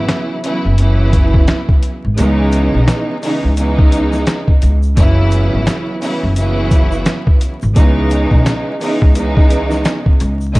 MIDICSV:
0, 0, Header, 1, 4, 480
1, 0, Start_track
1, 0, Key_signature, 4, "minor"
1, 0, Tempo, 697674
1, 1498, Time_signature, 4, 2, 24, 8
1, 7290, End_track
2, 0, Start_track
2, 0, Title_t, "String section"
2, 0, Program_c, 0, 48
2, 0, Note_on_c, 0, 49, 110
2, 0, Note_on_c, 0, 52, 93
2, 0, Note_on_c, 0, 54, 93
2, 0, Note_on_c, 0, 59, 90
2, 0, Note_on_c, 0, 64, 117
2, 249, Note_off_c, 0, 49, 0
2, 252, Note_off_c, 0, 52, 0
2, 254, Note_off_c, 0, 54, 0
2, 256, Note_off_c, 0, 59, 0
2, 259, Note_off_c, 0, 64, 0
2, 292, Note_on_c, 0, 49, 90
2, 298, Note_on_c, 0, 52, 85
2, 302, Note_on_c, 0, 54, 79
2, 306, Note_on_c, 0, 59, 81
2, 311, Note_on_c, 0, 64, 100
2, 520, Note_off_c, 0, 49, 0
2, 523, Note_off_c, 0, 52, 0
2, 525, Note_off_c, 0, 54, 0
2, 527, Note_off_c, 0, 59, 0
2, 529, Note_off_c, 0, 64, 0
2, 532, Note_on_c, 0, 49, 108
2, 537, Note_on_c, 0, 52, 90
2, 541, Note_on_c, 0, 54, 85
2, 546, Note_on_c, 0, 59, 92
2, 550, Note_on_c, 0, 64, 108
2, 1318, Note_off_c, 0, 49, 0
2, 1321, Note_off_c, 0, 52, 0
2, 1323, Note_off_c, 0, 54, 0
2, 1325, Note_off_c, 0, 59, 0
2, 1327, Note_off_c, 0, 64, 0
2, 1490, Note_on_c, 0, 49, 110
2, 1494, Note_on_c, 0, 52, 90
2, 1498, Note_on_c, 0, 56, 94
2, 1503, Note_on_c, 0, 59, 98
2, 1507, Note_on_c, 0, 63, 115
2, 2168, Note_off_c, 0, 49, 0
2, 2170, Note_off_c, 0, 52, 0
2, 2172, Note_off_c, 0, 56, 0
2, 2174, Note_off_c, 0, 59, 0
2, 2176, Note_off_c, 0, 63, 0
2, 2208, Note_on_c, 0, 49, 94
2, 2214, Note_on_c, 0, 52, 88
2, 2218, Note_on_c, 0, 56, 80
2, 2223, Note_on_c, 0, 59, 83
2, 2227, Note_on_c, 0, 63, 102
2, 2438, Note_off_c, 0, 49, 0
2, 2441, Note_off_c, 0, 52, 0
2, 2443, Note_off_c, 0, 56, 0
2, 2445, Note_off_c, 0, 59, 0
2, 2447, Note_off_c, 0, 63, 0
2, 2449, Note_on_c, 0, 49, 96
2, 2455, Note_on_c, 0, 52, 91
2, 2459, Note_on_c, 0, 56, 90
2, 2463, Note_on_c, 0, 59, 92
2, 2468, Note_on_c, 0, 63, 115
2, 3237, Note_off_c, 0, 49, 0
2, 3240, Note_off_c, 0, 52, 0
2, 3242, Note_off_c, 0, 56, 0
2, 3244, Note_off_c, 0, 59, 0
2, 3246, Note_off_c, 0, 63, 0
2, 3415, Note_on_c, 0, 49, 110
2, 3419, Note_on_c, 0, 52, 90
2, 3424, Note_on_c, 0, 54, 93
2, 3429, Note_on_c, 0, 59, 91
2, 3433, Note_on_c, 0, 64, 118
2, 4090, Note_off_c, 0, 49, 0
2, 4092, Note_off_c, 0, 52, 0
2, 4095, Note_off_c, 0, 54, 0
2, 4097, Note_off_c, 0, 59, 0
2, 4099, Note_off_c, 0, 64, 0
2, 4134, Note_on_c, 0, 49, 92
2, 4139, Note_on_c, 0, 52, 83
2, 4143, Note_on_c, 0, 54, 82
2, 4147, Note_on_c, 0, 59, 80
2, 4153, Note_on_c, 0, 64, 96
2, 4361, Note_off_c, 0, 49, 0
2, 4363, Note_off_c, 0, 52, 0
2, 4365, Note_off_c, 0, 54, 0
2, 4367, Note_off_c, 0, 59, 0
2, 4370, Note_off_c, 0, 64, 0
2, 4373, Note_on_c, 0, 49, 112
2, 4378, Note_on_c, 0, 52, 93
2, 4382, Note_on_c, 0, 54, 84
2, 4387, Note_on_c, 0, 59, 92
2, 4392, Note_on_c, 0, 64, 110
2, 5159, Note_off_c, 0, 49, 0
2, 5161, Note_off_c, 0, 52, 0
2, 5164, Note_off_c, 0, 54, 0
2, 5166, Note_off_c, 0, 59, 0
2, 5168, Note_off_c, 0, 64, 0
2, 5330, Note_on_c, 0, 49, 110
2, 5335, Note_on_c, 0, 52, 92
2, 5339, Note_on_c, 0, 56, 96
2, 5344, Note_on_c, 0, 59, 97
2, 5349, Note_on_c, 0, 63, 115
2, 6008, Note_off_c, 0, 49, 0
2, 6010, Note_off_c, 0, 52, 0
2, 6013, Note_off_c, 0, 56, 0
2, 6015, Note_off_c, 0, 59, 0
2, 6017, Note_off_c, 0, 63, 0
2, 6049, Note_on_c, 0, 49, 93
2, 6053, Note_on_c, 0, 52, 91
2, 6058, Note_on_c, 0, 56, 85
2, 6063, Note_on_c, 0, 59, 84
2, 6067, Note_on_c, 0, 63, 102
2, 6279, Note_off_c, 0, 49, 0
2, 6281, Note_off_c, 0, 52, 0
2, 6283, Note_off_c, 0, 56, 0
2, 6285, Note_off_c, 0, 59, 0
2, 6287, Note_off_c, 0, 63, 0
2, 6288, Note_on_c, 0, 49, 97
2, 6293, Note_on_c, 0, 52, 94
2, 6298, Note_on_c, 0, 56, 93
2, 6302, Note_on_c, 0, 59, 94
2, 6307, Note_on_c, 0, 63, 112
2, 7077, Note_off_c, 0, 49, 0
2, 7079, Note_off_c, 0, 52, 0
2, 7081, Note_off_c, 0, 56, 0
2, 7083, Note_off_c, 0, 59, 0
2, 7086, Note_off_c, 0, 63, 0
2, 7253, Note_on_c, 0, 49, 109
2, 7257, Note_on_c, 0, 52, 89
2, 7262, Note_on_c, 0, 54, 96
2, 7267, Note_on_c, 0, 59, 91
2, 7290, Note_off_c, 0, 49, 0
2, 7290, Note_off_c, 0, 52, 0
2, 7290, Note_off_c, 0, 54, 0
2, 7290, Note_off_c, 0, 59, 0
2, 7290, End_track
3, 0, Start_track
3, 0, Title_t, "Upright bass"
3, 0, Program_c, 1, 32
3, 447, Note_on_c, 1, 30, 89
3, 994, Note_off_c, 1, 30, 0
3, 1407, Note_on_c, 1, 32, 86
3, 1493, Note_off_c, 1, 32, 0
3, 1504, Note_on_c, 1, 37, 109
3, 1857, Note_off_c, 1, 37, 0
3, 1886, Note_on_c, 1, 35, 94
3, 1972, Note_off_c, 1, 35, 0
3, 2366, Note_on_c, 1, 37, 86
3, 2913, Note_off_c, 1, 37, 0
3, 3183, Note_on_c, 1, 37, 92
3, 3399, Note_off_c, 1, 37, 0
3, 3422, Note_on_c, 1, 30, 108
3, 3776, Note_off_c, 1, 30, 0
3, 3807, Note_on_c, 1, 32, 81
3, 3893, Note_off_c, 1, 32, 0
3, 4288, Note_on_c, 1, 30, 91
3, 4834, Note_off_c, 1, 30, 0
3, 5247, Note_on_c, 1, 32, 90
3, 5333, Note_off_c, 1, 32, 0
3, 5342, Note_on_c, 1, 37, 109
3, 5696, Note_off_c, 1, 37, 0
3, 5721, Note_on_c, 1, 35, 95
3, 5809, Note_off_c, 1, 35, 0
3, 6208, Note_on_c, 1, 37, 89
3, 6754, Note_off_c, 1, 37, 0
3, 7023, Note_on_c, 1, 37, 93
3, 7239, Note_off_c, 1, 37, 0
3, 7262, Note_on_c, 1, 30, 110
3, 7290, Note_off_c, 1, 30, 0
3, 7290, End_track
4, 0, Start_track
4, 0, Title_t, "Drums"
4, 59, Note_on_c, 9, 38, 105
4, 60, Note_on_c, 9, 42, 80
4, 64, Note_on_c, 9, 40, 87
4, 128, Note_off_c, 9, 38, 0
4, 129, Note_off_c, 9, 42, 0
4, 133, Note_off_c, 9, 40, 0
4, 302, Note_on_c, 9, 42, 75
4, 370, Note_off_c, 9, 42, 0
4, 537, Note_on_c, 9, 42, 92
4, 605, Note_off_c, 9, 42, 0
4, 777, Note_on_c, 9, 36, 101
4, 778, Note_on_c, 9, 42, 78
4, 846, Note_off_c, 9, 36, 0
4, 847, Note_off_c, 9, 42, 0
4, 923, Note_on_c, 9, 36, 98
4, 992, Note_off_c, 9, 36, 0
4, 1015, Note_on_c, 9, 42, 79
4, 1018, Note_on_c, 9, 38, 120
4, 1023, Note_on_c, 9, 40, 92
4, 1084, Note_off_c, 9, 42, 0
4, 1087, Note_off_c, 9, 38, 0
4, 1092, Note_off_c, 9, 40, 0
4, 1161, Note_on_c, 9, 36, 94
4, 1229, Note_off_c, 9, 36, 0
4, 1256, Note_on_c, 9, 42, 72
4, 1325, Note_off_c, 9, 42, 0
4, 1497, Note_on_c, 9, 42, 111
4, 1502, Note_on_c, 9, 82, 71
4, 1566, Note_off_c, 9, 42, 0
4, 1570, Note_off_c, 9, 82, 0
4, 1733, Note_on_c, 9, 82, 48
4, 1738, Note_on_c, 9, 42, 70
4, 1801, Note_off_c, 9, 82, 0
4, 1807, Note_off_c, 9, 42, 0
4, 1979, Note_on_c, 9, 38, 106
4, 1980, Note_on_c, 9, 42, 78
4, 1981, Note_on_c, 9, 82, 68
4, 1984, Note_on_c, 9, 40, 87
4, 2048, Note_off_c, 9, 38, 0
4, 2049, Note_off_c, 9, 42, 0
4, 2049, Note_off_c, 9, 82, 0
4, 2053, Note_off_c, 9, 40, 0
4, 2221, Note_on_c, 9, 82, 58
4, 2222, Note_on_c, 9, 46, 57
4, 2290, Note_off_c, 9, 46, 0
4, 2290, Note_off_c, 9, 82, 0
4, 2454, Note_on_c, 9, 82, 73
4, 2457, Note_on_c, 9, 42, 93
4, 2523, Note_off_c, 9, 82, 0
4, 2526, Note_off_c, 9, 42, 0
4, 2605, Note_on_c, 9, 36, 103
4, 2674, Note_off_c, 9, 36, 0
4, 2696, Note_on_c, 9, 82, 51
4, 2699, Note_on_c, 9, 42, 78
4, 2765, Note_off_c, 9, 82, 0
4, 2767, Note_off_c, 9, 42, 0
4, 2840, Note_on_c, 9, 82, 52
4, 2844, Note_on_c, 9, 38, 38
4, 2909, Note_off_c, 9, 82, 0
4, 2913, Note_off_c, 9, 38, 0
4, 2936, Note_on_c, 9, 42, 80
4, 2936, Note_on_c, 9, 82, 68
4, 2939, Note_on_c, 9, 38, 121
4, 2944, Note_on_c, 9, 40, 96
4, 3005, Note_off_c, 9, 42, 0
4, 3005, Note_off_c, 9, 82, 0
4, 3008, Note_off_c, 9, 38, 0
4, 3013, Note_off_c, 9, 40, 0
4, 3082, Note_on_c, 9, 36, 98
4, 3150, Note_off_c, 9, 36, 0
4, 3178, Note_on_c, 9, 42, 75
4, 3178, Note_on_c, 9, 82, 47
4, 3246, Note_off_c, 9, 42, 0
4, 3247, Note_off_c, 9, 82, 0
4, 3321, Note_on_c, 9, 82, 44
4, 3390, Note_off_c, 9, 82, 0
4, 3419, Note_on_c, 9, 42, 107
4, 3420, Note_on_c, 9, 36, 112
4, 3422, Note_on_c, 9, 82, 69
4, 3488, Note_off_c, 9, 36, 0
4, 3488, Note_off_c, 9, 42, 0
4, 3491, Note_off_c, 9, 82, 0
4, 3653, Note_on_c, 9, 82, 47
4, 3660, Note_on_c, 9, 42, 73
4, 3722, Note_off_c, 9, 82, 0
4, 3729, Note_off_c, 9, 42, 0
4, 3900, Note_on_c, 9, 38, 106
4, 3901, Note_on_c, 9, 42, 80
4, 3901, Note_on_c, 9, 82, 70
4, 3905, Note_on_c, 9, 40, 87
4, 3969, Note_off_c, 9, 38, 0
4, 3970, Note_off_c, 9, 42, 0
4, 3970, Note_off_c, 9, 82, 0
4, 3974, Note_off_c, 9, 40, 0
4, 4142, Note_on_c, 9, 46, 54
4, 4142, Note_on_c, 9, 82, 57
4, 4211, Note_off_c, 9, 46, 0
4, 4211, Note_off_c, 9, 82, 0
4, 4374, Note_on_c, 9, 82, 75
4, 4377, Note_on_c, 9, 42, 98
4, 4443, Note_off_c, 9, 82, 0
4, 4446, Note_off_c, 9, 42, 0
4, 4616, Note_on_c, 9, 82, 51
4, 4617, Note_on_c, 9, 36, 101
4, 4619, Note_on_c, 9, 42, 81
4, 4684, Note_off_c, 9, 82, 0
4, 4686, Note_off_c, 9, 36, 0
4, 4688, Note_off_c, 9, 42, 0
4, 4759, Note_on_c, 9, 82, 52
4, 4828, Note_off_c, 9, 82, 0
4, 4855, Note_on_c, 9, 42, 79
4, 4855, Note_on_c, 9, 82, 68
4, 4858, Note_on_c, 9, 38, 118
4, 4863, Note_on_c, 9, 40, 93
4, 4924, Note_off_c, 9, 42, 0
4, 4924, Note_off_c, 9, 82, 0
4, 4927, Note_off_c, 9, 38, 0
4, 4932, Note_off_c, 9, 40, 0
4, 5001, Note_on_c, 9, 36, 96
4, 5070, Note_off_c, 9, 36, 0
4, 5097, Note_on_c, 9, 82, 48
4, 5098, Note_on_c, 9, 42, 74
4, 5166, Note_off_c, 9, 82, 0
4, 5167, Note_off_c, 9, 42, 0
4, 5241, Note_on_c, 9, 82, 44
4, 5309, Note_off_c, 9, 82, 0
4, 5339, Note_on_c, 9, 42, 112
4, 5340, Note_on_c, 9, 36, 115
4, 5342, Note_on_c, 9, 82, 70
4, 5408, Note_off_c, 9, 42, 0
4, 5409, Note_off_c, 9, 36, 0
4, 5411, Note_off_c, 9, 82, 0
4, 5574, Note_on_c, 9, 82, 49
4, 5580, Note_on_c, 9, 42, 72
4, 5643, Note_off_c, 9, 82, 0
4, 5649, Note_off_c, 9, 42, 0
4, 5718, Note_on_c, 9, 36, 81
4, 5787, Note_off_c, 9, 36, 0
4, 5821, Note_on_c, 9, 38, 103
4, 5821, Note_on_c, 9, 82, 67
4, 5822, Note_on_c, 9, 42, 83
4, 5826, Note_on_c, 9, 40, 86
4, 5889, Note_off_c, 9, 38, 0
4, 5890, Note_off_c, 9, 42, 0
4, 5890, Note_off_c, 9, 82, 0
4, 5895, Note_off_c, 9, 40, 0
4, 6062, Note_on_c, 9, 82, 56
4, 6063, Note_on_c, 9, 46, 54
4, 6131, Note_off_c, 9, 82, 0
4, 6132, Note_off_c, 9, 46, 0
4, 6205, Note_on_c, 9, 36, 84
4, 6274, Note_off_c, 9, 36, 0
4, 6295, Note_on_c, 9, 82, 72
4, 6298, Note_on_c, 9, 42, 97
4, 6364, Note_off_c, 9, 82, 0
4, 6367, Note_off_c, 9, 42, 0
4, 6446, Note_on_c, 9, 36, 104
4, 6514, Note_off_c, 9, 36, 0
4, 6536, Note_on_c, 9, 82, 50
4, 6539, Note_on_c, 9, 42, 78
4, 6605, Note_off_c, 9, 82, 0
4, 6608, Note_off_c, 9, 42, 0
4, 6679, Note_on_c, 9, 82, 54
4, 6685, Note_on_c, 9, 38, 38
4, 6748, Note_off_c, 9, 82, 0
4, 6754, Note_off_c, 9, 38, 0
4, 6776, Note_on_c, 9, 82, 68
4, 6777, Note_on_c, 9, 42, 81
4, 6780, Note_on_c, 9, 38, 116
4, 6786, Note_on_c, 9, 40, 97
4, 6845, Note_off_c, 9, 82, 0
4, 6846, Note_off_c, 9, 42, 0
4, 6849, Note_off_c, 9, 38, 0
4, 6854, Note_off_c, 9, 40, 0
4, 6922, Note_on_c, 9, 36, 96
4, 6991, Note_off_c, 9, 36, 0
4, 7017, Note_on_c, 9, 82, 49
4, 7018, Note_on_c, 9, 42, 72
4, 7086, Note_off_c, 9, 82, 0
4, 7087, Note_off_c, 9, 42, 0
4, 7160, Note_on_c, 9, 82, 44
4, 7229, Note_off_c, 9, 82, 0
4, 7259, Note_on_c, 9, 42, 108
4, 7260, Note_on_c, 9, 36, 118
4, 7261, Note_on_c, 9, 82, 72
4, 7290, Note_off_c, 9, 36, 0
4, 7290, Note_off_c, 9, 42, 0
4, 7290, Note_off_c, 9, 82, 0
4, 7290, End_track
0, 0, End_of_file